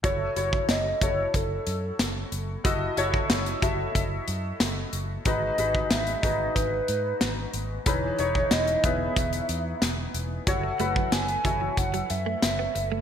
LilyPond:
<<
  \new Staff \with { instrumentName = "Soft synth lead" } { \time 4/4 \key fis \dorian \tempo 4 = 92 cis''4 dis''8 cis''8 a'4. r8 | r1 | dis''4 e''8 dis''8 b'4. r8 | cis''4 dis''8 e''4. r4 |
fis''4 gis''4 fis''8 e''8 e''8. r16 | }
  \new Staff \with { instrumentName = "Grand piano" } { \time 4/4 \key fis \dorian <e' fis' a' cis''>8 <e' fis' a' cis''>4 <e' fis' a' cis''>4. r4 | <e' fis' a' dis''>8 <e' fis' a' cis''>4 <e' fis' a' e''>4. r4 | <dis' fis' gis' b'>8 <dis' fis' gis' b'>4 <dis' fis' gis' b'>4. r4 | <dis' e' gis' b'>8 <dis' e' gis' cis''>4 <b e' gis' b'>4. r4 |
<e' fis' a' cis''>8 <e' fis' a' b'>4 <e' fis' a' cis''>4. r4 | }
  \new Staff \with { instrumentName = "Grand piano" } { \clef bass \time 4/4 \key fis \dorian r1 | r1 | gis,4. r2 r8 | e4. r2 r8 |
r1 | }
  \new Staff \with { instrumentName = "Clean electric guitar" } { \clef bass \time 4/4 \key fis \dorian r1 | r1 | r1 | r1 |
r8 a16 fis16 r8 e16 e16 r16 fis16 r16 a16 r16 b16 r16 a16 | }
  \new Staff \with { instrumentName = "Fingered electric bass" } { \clef bass \time 4/4 \key fis \dorian fis,,8 fis,,8 fis,,8 fis,,8 fis,,8 fis,8 fis,,8 fis,,8 | fis,,8 fis,,8 fis,,8 fis,,8 fis,,8 fis,8 fis,,8 fis,,8 | gis,,8 gis,,8 gis,,8 gis,,8 gis,,8 gis,8 gis,,8 gis,,8 | e,,8 e,,8 e,,8 e,,8 e,,8 e,8 e,,8 e,,8 |
fis,,8 fis,,8 fis,,8 fis,,8 fis,,8 fis,8 fis,,8 fis,,8 | }
  \new DrumStaff \with { instrumentName = "Drums" } \drummode { \time 4/4 <hh bd>8 hh16 bd16 <hh sn>8 <hh bd>8 <hh bd>8 hh8 <hh sn>8 hh8 | <hh bd>8 hh16 bd16 <hh sn>16 hh16 <hh bd>8 <hh bd>8 hh8 <hh sn>8 hh8 | <hh bd>8 hh16 bd16 <hh sn>16 hh16 <hh bd>8 <hh bd>8 hh8 <hh sn>8 hh8 | <hh bd>8 hh16 bd16 <hh sn>16 hh16 <hh bd>8 <hh bd>16 hh16 hh8 <hh sn>8 hh8 |
<hh bd>8 hh16 bd16 <hh sn>16 hh16 <hh bd>8 <hh bd>16 hh16 hh8 <hh sn>8 hh8 | }
>>